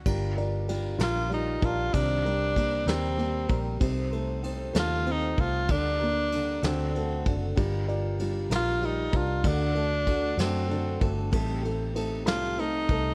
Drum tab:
CC |x-----|------|------|------|
RD |-xxxxx|xxxxxx|xxxxxx|xxxxxx|
SD |---o--|---o--|---o--|---o--|
BD |o----o|o-o--o|o----o|o----o|

CC |------|------|------|
RD |xxxxxx|xxxxxx|xxxxxx|
SD |---o--|---o--|---o--|
BD |o----o|o-o--o|o----o|